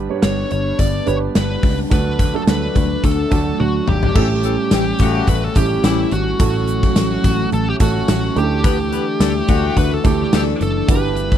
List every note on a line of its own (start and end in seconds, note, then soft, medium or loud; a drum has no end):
0.00 0.47 G2 medium
0.00 1.89 G3 medium
0.00 0.09 B3 medium
0.00 1.88 B3 medium
0.00 0.10 D4 medium
0.00 1.89 D4 medium
0.00 0.10 G4 medium
0.00 1.07 B4 loud
0.09 0.99 B3 medium
0.09 1.00 D4 medium
0.09 1.00 G4 medium
0.09 1.00 C#5 medium
0.23 0.43 G1 loud
0.23 0.49 C#5 loud
0.23 snare loud
0.23 closed hi-hat medium
0.51 0.72 G1 medium
0.51 0.79 C#5 medium
0.51 closed hi-hat medium
0.79 0.99 G1 loud
0.79 1.08 D5 loud
0.79 kick medium
0.79 closed hi-hat medium
1.06 1.28 G1 loud
1.06 1.84 B3 medium
1.06 1.85 D4 medium
1.06 1.85 G4 medium
1.06 1.85 B4 medium
1.06 1.16 C#5 loud
1.06 closed hi-hat medium
1.35 1.56 G1 loud
1.35 1.76 B4 loud
1.35 snare loud
1.35 closed hi-hat medium
1.63 1.83 C#2 medium
1.63 kick loud
1.63 open hi-hat medium
1.90 2.32 D2 medium
1.90 2.71 D3 medium
1.90 4.13 F#3 medium
1.90 2.30 A3 medium
1.90 4.13 A3 medium
1.90 2.31 D4 medium
1.90 4.13 D4 medium
1.90 2.31 F#4 medium
1.90 2.31 A4 medium
1.90 2.32 B4 loud
1.90 kick loud
1.90 closed hi-hat medium
2.19 kick medium
2.19 closed hi-hat medium
2.34 3.24 A3 medium
2.34 3.24 D4 medium
2.34 3.24 F#4 medium
2.34 3.24 A4 medium
2.34 2.41 A4 medium
2.47 2.68 D2 loud
2.47 3.05 B4 medium
2.47 snare loud
2.47 closed hi-hat medium
2.75 2.96 D2 loud
2.75 kick medium
2.75 closed hi-hat medium
3.04 3.24 D2 loud
3.04 3.57 A4 medium
3.04 kick medium
3.04 closed hi-hat medium
3.30 3.52 D2 loud
3.30 4.09 A3 medium
3.30 4.09 D4 medium
3.30 4.10 F#4 medium
3.30 4.10 A4 medium
3.30 kick medium
3.30 closed hi-hat medium
3.60 3.80 D2 medium
3.60 3.88 F#4 medium
3.60 high tom medium
3.88 4.08 G#1 loud
3.88 5.32 G4 medium
3.88 mid tom medium
4.03 floor tom medium
4.15 4.56 A1 loud
4.15 4.96 A2 medium
4.15 4.28 E3 loud
4.15 6.38 G3 medium
4.15 5.19 A3 medium
4.15 10.85 A3 medium
4.15 5.19 C#4 medium
4.15 4.28 C#4 loud
4.15 8.32 C#4 medium
4.15 5.20 E4 medium
4.15 5.20 G4 medium
4.15 4.28 A4 loud
4.15 kick loud
4.15 crash medium
4.43 4.56 E3 medium
4.43 4.56 C#4 medium
4.43 4.56 A4 medium
4.43 closed hi-hat medium
4.71 4.92 A1 loud
4.71 4.84 E3 medium
4.71 4.84 C#4 medium
4.71 4.84 G4 loud
4.71 snare loud
4.71 closed hi-hat loud
4.71 tambourine medium
4.99 5.20 A1 medium
4.99 5.52 C#3 loud
4.99 5.53 A3 loud
4.99 5.53 F#4 loud
4.99 kick medium
4.99 closed hi-hat medium
5.27 5.48 A1 loud
5.27 5.44 B4 medium
5.27 kick medium
5.27 closed hi-hat medium
5.44 5.57 A4 medium
5.55 5.76 A1 medium
5.55 6.34 A3 medium
5.55 6.34 C#4 medium
5.55 6.34 E4 medium
5.55 5.84 G4 medium
5.55 6.34 G4 medium
5.55 kick loud
5.55 closed hi-hat medium
5.84 6.04 A1 loud
5.84 6.06 E3 loud
5.84 6.06 C#4 loud
5.84 6.12 E4 medium
5.84 6.06 G4 loud
5.84 snare loud
5.84 closed hi-hat medium
5.84 tambourine medium
6.11 6.32 G#1 loud
6.11 7.48 F#4 medium
6.11 closed hi-hat medium
6.39 6.80 A1 loud
6.39 7.20 A2 medium
6.39 8.34 F#3 medium
6.39 7.44 A3 medium
6.39 7.43 C#4 medium
6.39 7.44 F#4 medium
6.39 7.44 A4 medium
6.39 kick loud
6.39 closed hi-hat medium
6.68 closed hi-hat medium
6.83 kick medium
6.96 7.16 A1 loud
6.96 snare loud
6.96 closed hi-hat medium
6.96 tambourine medium
7.24 7.44 A1 loud
7.24 kick medium
7.24 closed hi-hat medium
7.52 7.73 A1 loud
7.52 7.69 A4 medium
7.52 closed hi-hat medium
7.70 7.75 G4 medium
7.80 8.01 A1 loud
7.80 8.34 A3 medium
7.80 8.36 C#4 medium
7.80 8.36 F#4 medium
7.80 8.08 F#4 medium
7.80 8.37 A4 medium
7.80 kick loud
7.80 closed hi-hat medium
8.08 8.29 A1 medium
8.08 8.35 F#4 medium
8.08 snare loud
8.08 closed hi-hat medium
8.08 tambourine medium
8.36 8.97 D2 loud
8.36 9.16 D3 medium
8.36 10.86 E3 medium
8.36 9.40 A3 medium
8.36 9.40 D4 medium
8.36 11.38 D4 medium
8.36 9.40 E4 medium
8.36 8.44 G4 medium
8.36 9.78 G4 loud
8.36 closed hi-hat medium
8.43 9.44 A4 medium
8.64 8.76 B3 loud
8.64 8.76 G4 loud
8.64 8.76 B4 loud
8.64 kick loud
8.64 closed hi-hat medium
8.92 9.05 B3 medium
8.92 9.05 G4 medium
8.92 9.05 B4 medium
8.92 closed hi-hat medium
9.20 9.41 D2 loud
9.20 9.33 E3 medium
9.20 9.33 D4 medium
9.20 9.33 A4 loud
9.20 snare loud
9.20 closed hi-hat medium
9.20 tambourine medium
9.48 9.69 D2 medium
9.48 10.01 D3 loud
9.48 10.01 A3 loud
9.48 10.01 F#4 loud
9.48 kick medium
9.48 closed hi-hat medium
9.77 9.97 D2 loud
9.77 9.94 B4 medium
9.77 kick medium
9.77 closed hi-hat medium
9.94 10.06 A4 medium
10.04 10.25 D2 loud
10.04 10.82 A3 medium
10.04 10.82 D4 medium
10.04 10.82 E4 medium
10.04 10.33 G4 medium
10.04 10.83 A4 medium
10.04 kick loud
10.04 closed hi-hat medium
10.32 10.53 D2 loud
10.32 10.55 E3 loud
10.32 10.55 D4 loud
10.32 10.42 G4 medium
10.32 10.55 A4 loud
10.32 snare loud
10.32 closed hi-hat medium
10.32 tambourine medium
10.61 10.81 F#1 medium
10.61 10.90 A4 loud
10.61 closed hi-hat medium
10.88 11.29 G1 loud
10.88 11.38 G2 medium
10.88 11.38 G3 medium
10.88 11.38 B3 medium
10.88 11.38 D4 medium
10.88 11.38 E4 medium
10.88 10.96 F#4 medium
10.88 11.38 A4 medium
10.88 11.38 B4 medium
10.88 11.38 B4 loud
10.88 kick loud
10.88 closed hi-hat medium
10.96 11.38 G4 medium
11.16 closed hi-hat medium
11.32 kick medium